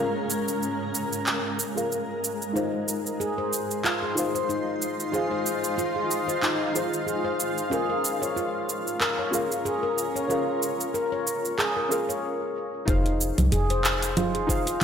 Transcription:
Already playing: ambient pad G#3 C#4 F4 A#4 F5, synth stab C#4 F4 G#4
0.00 synth stab A#4 F5
0.30 shaker
0.48 shaker
0.63 shaker
0.95 shaker
1.13 shaker
1.26 clap, shaker
1.59 shaker
1.75 synth stab C#4 F4 G#4 A#4 F5, shaker
1.92 shaker
2.24 shaker
2.42 shaker
2.53 synth stab D#4 F4 G#4 C5, handpan D#4, shaker
2.57 synth stab F5
2.74 ambient pad D#4 C6
2.88 shaker
2.94 ambient pad F4
3.06 shaker
3.20 handpan G#4, ambient pad F5, shaker
3.38 handpan C5
3.53 shaker
3.71 shaker
3.84 handpan F4, clap, shaker
4.02 handpan G#4
4.15 synth stab D#4 F4 G#4 C5, shaker
4.19 synth stab F5
4.35 handpan C5, shaker
4.49 handpan D#4, shaker
4.82 shaker
5.00 shaker
5.12 synth stab D#4 F4 G#4 C5 F5, handpan G#4, shaker
5.31 handpan C5
5.46 shaker
5.64 shaker
5.78 handpan F4, shaker
5.96 handpan G#4
6.11 shaker
6.28 handpan C5, shaker
6.42 handpan D#4, clap, shaker
6.73 synth stab D#4 F4 G#4 C5, shaker
6.77 synth stab F5
6.93 shaker
7.07 handpan G#4, shaker
7.24 handpan C5
7.40 shaker
7.58 shaker
7.70 synth stab C#4 F4 G#4 A#4 F5, handpan G#4, shaker
7.87 ambient pad C#4, handpan A#4
8.03 ambient pad A#4, shaker
8.22 handpan C#5, shaker
8.36 handpan F4, shaker
8.69 shaker
8.87 shaker
9.01 handpan A#4, clap, shaker
9.19 handpan C#5
9.31 synth stab C#4 F4 G#4 A#4 F5, shaker
9.52 shaker
9.65 handpan G#4, shaker
9.83 handpan A#4
9.98 shaker
10.16 handpan C#5, shaker
10.28 synth stab C#4 F4 G#4 A#4, handpan F4, shaker
10.32 synth stab F5
10.62 shaker
10.80 shaker
10.94 handpan A#4, shaker
11.12 handpan C#5
11.27 shaker
11.45 shaker
11.58 handpan G#4, clap, shaker
11.76 handpan A#4
11.89 synth stab C#4 F4 G#4 A#4 F5, shaker
12.09 handpan C#5, shaker
12.85 fm bass F1, synth stab D#4 F4 G#4 C5, handpan D#4, kick, closed hi-hat, shaker
12.90 synth stab F5
13.06 closed hi-hat
13.12 ambient pad D#4
13.21 shaker
13.38 fm bass C2, closed hi-hat, low conga, shaker
13.52 fm bass F1, handpan G#4, closed hi-hat, shaker
13.60 ambient pad C6
13.70 handpan C5, closed hi-hat
13.84 clap, shaker
14.03 closed hi-hat, shaker
14.17 handpan F4, closed hi-hat, low conga, shaker
14.35 handpan G#4, closed hi-hat
14.47 synth stab D#4 F4 G#4 C5, kick, shaker
14.51 synth stab F5
14.67 handpan C5, closed hi-hat, shaker

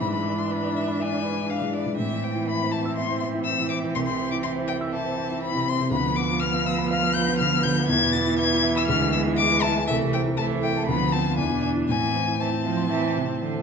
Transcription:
Already playing: cello E3
0.00 grand piano G#2, viola D4, violin B5
0.12 grand piano G#3, violin B5
0.25 grand piano D4
0.38 grand piano E4, violin C6
0.51 grand piano B4, violin B5
0.63 grand piano D5
0.75 grand piano E5, violin E5
0.88 grand piano B5
1.00 grand piano E5, violin G#5
1.13 grand piano D5
1.24 grand piano B4
1.38 grand piano E4
1.49 grand piano D4, violin F5
1.62 grand piano G#3
1.73 grand piano D4, violin D5
1.86 grand piano G#3
1.97 grand piano A2, cello E3, viola C4, violin E5
2.11 grand piano E3
2.23 grand piano C4, violin G5
2.35 grand piano E4
2.48 grand piano E5, violin B5
2.60 grand piano C5
2.72 grand piano E5, violin A5
2.85 grand piano E6
2.96 grand piano E5, violin C6
3.09 grand piano C5
3.20 grand piano E5, violin C6
3.34 grand piano E4
3.45 grand piano C4, violin E6
3.59 grand piano E3
3.70 grand piano C4, violin D6
3.84 grand piano E3
3.95 grand piano C2, violin C6
4.06 grand piano C3, violin C6
4.19 grand piano C4
4.32 grand piano E4, violin D6
4.43 grand piano E5, violin C6
4.56 grand piano C5
4.68 grand piano E5, violin G5
4.81 grand piano E6
4.93 grand piano E5, violin A5
5.05 grand piano C5
5.18 grand piano E5
5.31 grand piano E4
5.42 grand piano C4, violin B5
5.55 grand piano C3
5.67 grand piano C4, violin C6
5.79 grand piano C3
5.91 grand piano D2, cello F3, viola B3, violin B5
6.03 grand piano D3
6.16 grand piano B3, violin D6
6.29 grand piano F4
6.40 grand piano B4, violin F6
6.53 grand piano F4
6.65 grand piano F5, violin E6
6.78 grand piano B5
6.89 grand piano F5, violin F6
7.04 grand piano B4
7.14 grand piano F4, violin G6
7.28 grand piano B3
7.38 grand piano D3, violin F6
7.53 grand piano B3
7.63 grand piano D3, violin G6
7.77 grand piano B3
7.88 grand piano E2, cello E3, violin G#6
8.02 grand piano B2
8.13 grand piano B3, violin A6
8.27 grand piano E4
8.38 grand piano B4, violin G#6
8.52 grand piano E4
8.64 grand piano E5
8.76 grand piano B5, violin E6
8.87 grand piano D2, viola G#3, violin F6
9.01 grand piano D3
9.12 grand piano B3, violin E6
9.27 grand piano E4
9.37 grand piano G#4, violin D6
9.52 grand piano B4
9.62 grand piano E5, violin A5
9.77 grand piano G#5
9.87 grand piano C2, cello E3, viola A3, violin E5
10.03 grand piano C3
10.13 grand piano C4, violin G5
10.27 grand piano E4
10.37 cello E3, viola A3, grand piano A4, violin A5
10.52 grand piano C5
10.62 grand piano E5, violin G5
10.77 grand piano A5
10.87 grand piano D2, cello F3, viola B3, violin B5
11.01 grand piano D3
11.13 grand piano B3, viola C4, violin A5
11.26 grand piano F4
11.37 grand piano E2, cello E3, viola D4, violin G#5
11.50 grand piano B2
11.62 grand piano D4, violin G#5
11.75 grand piano E4
11.88 grand piano A2, cello E3, viola C4, violin G#5
12.02 grand piano E3
12.15 grand piano C4
12.27 grand piano E4
12.39 cello E3, viola C4, grand piano C5, violin A5
12.52 grand piano E4
12.64 cello F3, grand piano E5
12.77 grand piano C6
12.90 cello E3, grand piano E5
13.03 grand piano C5
13.16 cello C3, grand piano E4
13.29 grand piano C4
13.41 cello D3, grand piano E3
13.54 grand piano C4

